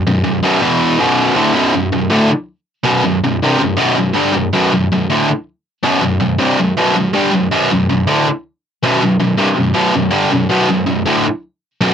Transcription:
X:1
M:4/4
L:1/8
Q:1/4=161
K:Bphr
V:1 name="Distorted electric guitar" clef=bass
[B,,,F,,] [B,,,F,,] [B,,,F,,B,,] [E,,B,,E,]2 [B,,,F,,B,,]2 [D,,A,,D,] | [B,,,F,,B,,] [B,,,F,,] [B,,,F,,] [D,,A,,D,] z3 [B,,,F,,B,,] | [B,,,F,,] [B,,,F,,] [C,,G,,C,] [B,,,F,,] [B,,,F,,B,,] [B,,,F,,] [G,,D,G,] [B,,,F,,] | [B,,,F,,B,,] [B,,,F,,] [B,,,F,,] [D,,A,,D,] z3 [B,,,F,,B,,] |
[B,,,F,,] [B,,,F,,] [C,,G,,C,] [B,,,F,,] [B,,,F,,B,,] [B,,,F,,] [G,,D,G,] [B,,,F,,] | [B,,,F,,B,,] [B,,,F,,] [B,,,F,,] [D,,A,,D,] z3 [B,,,F,,B,,] | [B,,,F,,] [B,,,F,,] [C,,G,,C,] [B,,,F,,] [B,,,F,,B,,] [B,,,F,,] [G,,D,G,] [B,,,F,,] | [B,,,F,,B,,] [B,,,F,,] [B,,,F,,] [D,,A,,D,] z3 [B,,,F,,B,,] |]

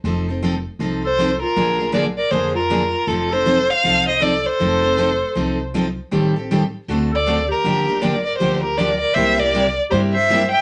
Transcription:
X:1
M:4/4
L:1/16
Q:"Swing" 1/4=158
K:Fmix
V:1 name="Violin"
z8 z2 c4 B2- | B4 d2 d2 c2 B6 | A2 c4 f4 e2 d2 c2- | c8- c2 z6 |
z8 z2 d4 B2- | B4 d2 d2 c2 B2 d2 d2 | =e2 d4 z2 c2 e4 g2 |]
V:2 name="Clarinet"
z8 z2 A4 F2- | F4 B2 B2 _A2 F6 | F2 A4 c4 c2 A2 A2- | A8- A2 z6 |
z8 z2 A4 G2- | G4 B2 B2 G2 G2 B2 B2 | c2 B4 z2 G2 c4 =e2 |]
V:3 name="Steel-string acoustic guitar"
[F,CEA]2 [CEA]2 [F,CEA] z3 [F,CEA]2 z2 [F,CEA] z3 | [D,F,B,D_A]2 [B,DA]2 [D,F,B,DA] z3 [D,F,B,DA]2 z2 [D,F,B,DA] z3 | [F,CEA]2 [CEA]2 [F,CEA] z3 [F,CEA]2 z2 [F,CEA] z3 | [F,CEA]2 [CEA]2 [F,CEA] z3 [F,CEA]2 z2 [F,CEA] z3 |
[E,G,CGA]2 [CGA]2 [E,G,CGA] z3 [D,A,C^FA]2 z2 [D,A,CFA] z3 | [D,F,B,DG]2 [B,DG]2 [D,F,B,DG] z3 [D,F,B,DG]2 z2 [D,F,B,DG] z3 | [C,G,B,=EG]2 [B,EG]2 [C,G,B,EG] z3 [C,G,B,EG]2 z2 [C,G,B,EG] z3 |]
V:4 name="Steel-string acoustic guitar"
[F,CEA]2 z2 [F,CEA] z3 [F,CEA]2 z2 [F,CEA] z3 | [D,F,B,D_A]2 z2 [D,F,B,DA] z3 [D,F,B,DA]2 z2 [D,F,B,DA] z3 | [F,CEA]2 z2 [F,CEA] z3 [F,CEA]2 z2 [F,CEA] z3 | [F,CEA]2 z2 [F,CEA] z3 [F,CEA]2 z2 [F,CEA] z3 |
[E,G,CGA]2 z2 [E,G,CGA] z3 [D,A,C^FA]2 z2 [D,A,CFA] z3 | [D,F,B,DG]2 z2 [D,F,B,DG] z3 [D,F,B,DG]2 z2 [D,F,B,DG] z3 | [C,G,B,=EG]2 z2 [C,G,B,EG] z3 [C,G,B,EG]2 z2 [C,G,B,EG] z3 |]
V:5 name="Upright bass" clef=bass
F,,,8 C,,8 | B,,,8 F,,8 | F,,,8 C,,8 | F,,,8 C,,8 |
A,,,8 D,,8 | G,,,8 D,,8 | C,,8 G,,8 |]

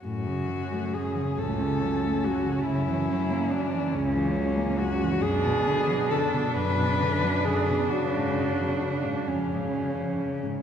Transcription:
X:1
M:6/8
L:1/16
Q:3/8=45
K:F#m
V:1 name="Cello"
F4 G2 A4 F2 | E4 D2 C4 F2 | G4 A2 B4 G2 | F6 z6 |]
V:2 name="Cello"
C12- | C12 | D12- | D6 C6 |]
V:3 name="Cello" clef=bass
A,, C, F, A, F, C, A,, C, F, A, F, C, | C, E, F, ^A, F, E, C, E, F, A, F, E, | F,, B,, D, F, D, B,, F,, B,, D, F, D, B,, | F,, G,, C, F, C, G,, ^E,, G,, C, ^E, C, G,, |]
V:4 name="Cello" clef=bass
F,,6 C,,6 | F,,6 C,,6 | B,,6 F,,6 | C,6 C,6 |]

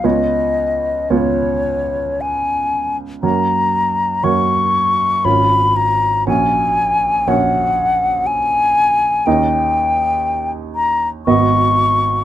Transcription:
X:1
M:3/4
L:1/16
Q:1/4=59
K:F#
V:1 name="Flute"
d4 c4 g3 z | a4 c'4 b2 a2 | g4 f4 g4 | =g6 a2 c'4 |]
V:2 name="Grand piano"
[C,,B,Ec]4 [C,,B,Ec]8 | [F,,A,Fc]4 [F,,A,Fc]4 [G,,,CEc]4 | [A,,,CFc]4 [A,,,CFc]8 | [D,,CDd]8 [G,,,B,Fd]4 |]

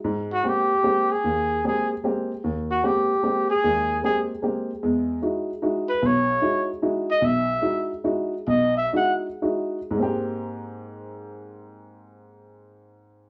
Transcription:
X:1
M:3/4
L:1/8
Q:"Swing" 1/4=150
K:Ab
V:1 name="Trumpet"
z _G =G3 A- | A2 A z3 | z _G =G3 A- | A2 A z3 |
z4 z =B | d3 z2 ^d | =e3 z3 | ^d =e ^f z3 |
z6 | z6 |]
V:2 name="Grand piano"
A,,2 [A,B,CG] z [A,B,CG] z | E,,2 [A,B,CG] z [A,B,CG] z | E,,2 [A,B,CG] z [A,B,CG] z | [E,,A,]2 [A,B,CG] z [A,B,CG] z |
[=E,,^G,]2 [G,^D=E^F] z [G,DEF] z | =B,,,2 [^G,^D=E^F] z [G,DEF] z | =B,,,2 [^G,^D=E^F] z [G,DEF] z | =B,,,2 [^G,^D=E^F] z [G,DEF] z |
[A,,A,B,CG]6- | [A,,A,B,CG]6 |]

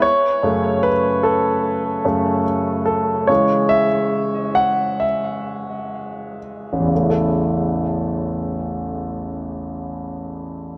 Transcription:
X:1
M:4/4
L:1/8
Q:1/4=66
K:A
V:1 name="Grand piano"
c2 B A3 z A | c e2 f e3 z | z8 |]
V:2 name="Grand piano" clef=bass
z [F,,C,A,]4 [F,,C,A,] z2 | [C,E,G,] z6 z | [A,,,E,,C,A,EA]8 |]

